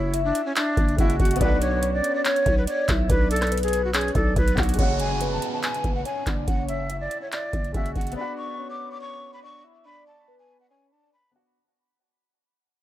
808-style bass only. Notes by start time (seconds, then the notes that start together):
Already playing: F#1
0.77 F#1
0.98 F#1
1.20 F#1
1.41 B1
2.46 B1
2.89 B1
3.10 B1
4.15 B1
4.36 B1
4.58 B1
4.79 F#1
5.84 F#1
6.27 F#1
6.48 F#1
7.53 F#1
7.74 F#1
7.96 F#1